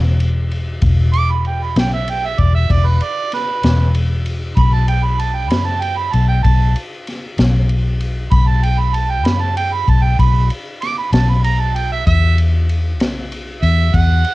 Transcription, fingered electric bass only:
Already playing: E1
0.82 E1
1.76 B1
2.39 E1
2.70 E1
3.64 E1
4.57 B1
5.52 F#2
6.14 B1
6.45 B1
7.39 B1
8.32 B1
9.25 F#2
9.88 B1
10.19 B1
11.12 B1
12.07 E2
13.01 B1
13.63 E2
13.94 E2

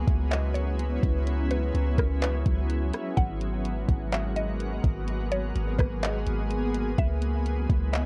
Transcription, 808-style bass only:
0.08 C#2
1.03 C#2
1.74 C#2
1.98 C#2
2.46 C#2
3.17 G#1
3.89 G#1
4.84 G#1
5.55 G#1
5.79 G#1
6.27 G#1
6.98 C#2
7.70 C#2

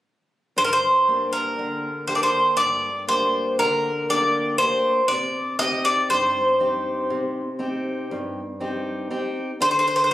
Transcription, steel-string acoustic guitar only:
0.56 G2
1.08 A#3 D4 G4
1.59 D3
2.08 A#3 D4 G4
2.59 G2
3.08 A#3 D4 G4
3.60 D3
4.09 A#3 D4 G4
4.60 A#3 D4 G4
5.10 C3
5.60 C4 D#4 G4
6.11 G2
6.60 C4 D#4 G4
7.10 C3
7.59 C4 D#4 G4
8.11 G2
8.60 C4 D#4 G4
9.11 C4 D#4 G4
9.61 D3
10.11 F#3

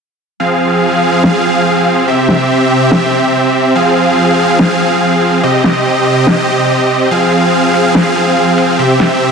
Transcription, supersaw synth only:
0.40 F3 C4 G#4 F5
2.08 C3 G4 E5
3.75 F3 G#4 F5
5.43 C3 C4 G4 D#5
7.11 F3 G#4 F5
8.79 C3 G4 E5

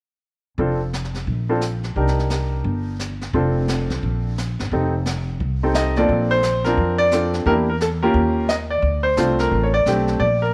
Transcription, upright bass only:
0.58 F1
1.27 A#1
1.96 C2
2.64 G1
3.33 F1
3.90 C2
4.03 A#1
4.59 G1
4.71 F1
5.40 C2
6.09 A#1
6.77 F2
7.46 E2
8.14 D#2
8.82 D2
9.17 C2
9.51 A1
9.86 B1
10.20 A#1

